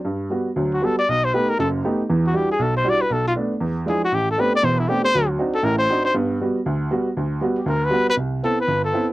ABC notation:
X:1
M:4/4
L:1/8
Q:"Swing" 1/4=236
K:G
V:1 name="Trumpet"
z4 z F A d | ^d c B _B A z3 | z F G _A =A c d B | A =F z4 ^G ^F |
G A B d c E G c- | c z2 A _B c2 c | z8 | z3 G _B =B2 B |
[K:C] z2 A B2 A2 z |]
V:2 name="Upright piano"
G,,2 [G,B,F] z [D,,F,]2 [G,B,F] z | B,,,2 [A,B,^DG] z [F,,,F,,]2 [A,B,DG] z | [E,,E,]2 [G,DEF] z B,,,2 [G,DEF] z | B,,,2 [A,B,D] z E,,2 [=F,^G,DE] z |
A,,,2 [A,B,CDG] z [E,,,E,,]2 [A,B,CDG] z | [D,,F,]2 [CD_EF] z [A,,,A,,]2 [CDEF] z | [G,,B,]2 [G,B,F] z D,,2 [G,B,F] z | D,,2 [G,B,F] z D,,2 [G,B,F] z |
[K:C] C,,2 [B,CE] z G,,,2 [B,CE] z |]